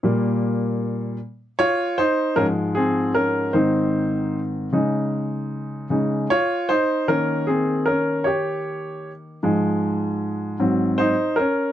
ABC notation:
X:1
M:6/8
L:1/8
Q:3/8=51
K:Db
V:1 name="Grand piano"
z4 [Fd] [Ec] | [DB] [CA] [DB] [Ec]2 z | z4 [Fd] [Ec] | B [CA] [DB] [=Gd]2 z |
z4 [Ec] [DB] |]
V:2 name="Grand piano" clef=bass
[B,,=G,B,]3 z3 | [A,,F,A,]3 [A,,E,C]3 | [D,A,E]3 [D,A,E] z2 | [E,B,D]6 |
[A,,F,A,]3 [A,,G,C] z2 |]